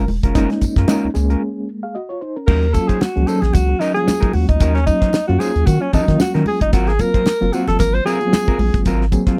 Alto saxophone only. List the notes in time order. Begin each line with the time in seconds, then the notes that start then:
2.47 A#4
2.73 A4
2.88 G#4
3.01 F#4
3.27 A4
3.42 G#4
3.53 F#4
3.80 D#4
3.94 G#4
4.34 F#4
4.48 D#4
4.75 C#4
4.86 D#4
5.27 F#4
5.39 G#4
5.66 F#4
5.81 C#4
5.94 D#4
6.21 F#4
6.47 G#4
6.61 D#4
6.73 F#4
6.88 G#4
7.01 A#4
7.53 F#4
7.68 A4
7.79 A#4
7.94 C5
8.05 G#4